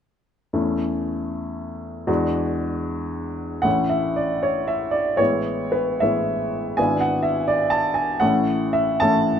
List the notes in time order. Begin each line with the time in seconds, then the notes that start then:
0.53 E2 A3 C#4 E4
2.07 E2 G#3 D4 F#4
3.62 A1 A3 C#4 E4 F#5
3.90 E5
4.16 D5
4.43 C#5
4.68 E5
4.91 D5
5.17 A1 G#3 B3 E4 C#5
5.72 B4
6.00 A1 G#3 B3 E4 E5
6.77 G#1 B3 D4 E4 G#5
7.01 F#5
7.23 E5
7.48 D5
7.70 A5
7.94 G#5
8.20 A1 A3 C#4 E4 F#5
8.73 E5
9.00 A1 A3 C#4 E4 A5